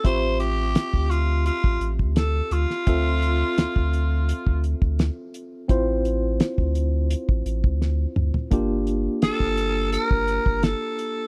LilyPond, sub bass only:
\new Staff \with { instrumentName = "Sub bass" } { \clef bass \time 4/4 \key d \minor \tempo 4 = 85 a,,4~ a,,16 d,4 a,,16 a,,16 d,8. d,16 r16 | d,4 d,16 d,4 d,8 d,8 r8. | a,,4~ a,,16 d,4 a,,16 a,,16 d,8. d,16 r16 | g,,4 g,,16 g,,4 g,,8 g,,8 r8. | }